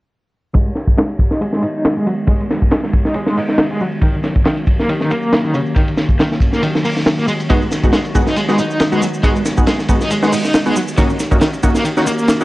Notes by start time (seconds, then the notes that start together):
0.54 D#3 F#3 G#3 B3 F#4, kick, ride, shaker
0.66 shaker
0.75 snare, ride, shaker
0.87 kick, shaker
0.97 G#3, snare, ride, shaker
1.09 ride
1.19 kick, ride, shaker
1.31 D#4, snare, shaker
1.41 G#3, ride, shaker
1.53 snare, shaker
1.62 D#4, ride, shaker
1.75 shaker
1.85 snare, ride, shaker
1.97 G#3, shaker
2.06 F#3, ride, shaker
2.18 shaker
2.27 G#3, kick, ride, shaker
2.40 ride, shaker
2.50 snare, ride, shaker
2.62 kick, shaker
2.71 G#3, snare, ride, shaker
2.83 snare, shaker
2.93 kick, ride, shaker
3.05 D#4, snare, shaker
3.14 G#3, ride, shaker
3.26 snare, shaker
3.36 D#4, open hi-hat, shaker
3.48 snare, shaker
3.58 snare, ride, shaker
3.70 G#3, shaker
3.80 F#3, shaker
3.91 shaker
4.01 D#3 A#3 C#4, kick, ride, shaker
4.13 shaker
4.23 snare, ride, shaker
4.35 kick, shaker
4.45 D#3, snare, ride, shaker
4.57 ride, shaker
4.67 kick, ride, shaker
4.79 A#3, snare, shaker
4.89 D#3, ride, shaker
5.01 snare, shaker
5.11 A#3, ride, shaker
5.22 shaker
5.32 snare, ride, shaker
5.44 D#3, shaker
5.54 C#3, ride, shaker
5.66 shaker
5.76 D#3, kick, ride, shaker
5.88 ride, shaker
5.97 snare, ride, shaker
6.09 kick, shaker
6.19 D#3, snare, ride, shaker
6.31 snare, shaker
6.40 kick, ride, shaker
6.53 A#3, snare, shaker
6.63 D#3, ride, shaker
6.75 snare, shaker
6.85 A#3, open hi-hat, shaker
6.97 snare, shaker
7.06 snare, ride, shaker
7.19 A#3, shaker
7.28 G#3, ride, shaker
7.40 ride, shaker
7.49 G#3 B3 D#4 F#4, kick, ride, shaker
7.62 shaker
7.71 snare, ride, shaker
7.83 G#3 B3 D#4 F#4, kick, shaker
7.93 G#3, snare, ride, shaker
8.05 ride, shaker
8.15 G#3 B3 D#4 F#4, kick, ride, shaker
8.27 D#4, snare, shaker
8.36 G#3, ride, shaker
8.48 G#3 B3 D#4 F#4, snare, shaker
8.58 D#4, ride, shaker
8.71 shaker
8.80 snare, ride, shaker
8.92 G#3 B3 D#4 F#4, shaker
9.02 F#3, ride, shaker
9.14 shaker
9.23 G#3 B3 D#4 F#4, kick, ride, shaker
9.36 ride, shaker
9.45 snare, ride, shaker
9.57 G#3 B3 D#4 F#4, kick, shaker
9.67 G#3, snare, ride, shaker
9.79 snare, shaker
9.88 G#3 B3 D#4 F#4, kick, ride, shaker
10.01 D#4, snare, shaker
10.11 G#3, ride, shaker
10.22 G#3 B3 D#4 F#4, snare, shaker
10.33 D#4, open hi-hat, shaker
10.45 snare, shaker
10.54 snare, ride, shaker
10.66 G#3 B3 D#4 F#4, shaker
10.76 F#3, shaker
10.88 shaker
10.98 D#3 F#3 A#3 C#4 D#4 F#4, kick, ride, shaker
11.10 shaker
11.19 snare, ride, shaker
11.31 A#3 C#4 D#4 F#4, kick, shaker
11.41 D#3, snare, ride, shaker
11.53 ride, shaker
11.63 A#3 C#4 D#4 F#4, kick, ride, shaker
11.75 A#3, snare, shaker
11.84 D#3, ride, shaker
11.97 A#3 C#4 D#4 F#4, snare, shaker
12.06 A#3, ride, shaker
12.18 shaker
12.28 snare, ride, shaker
12.40 D#3 A#3 C#4 D#4 F#4, shaker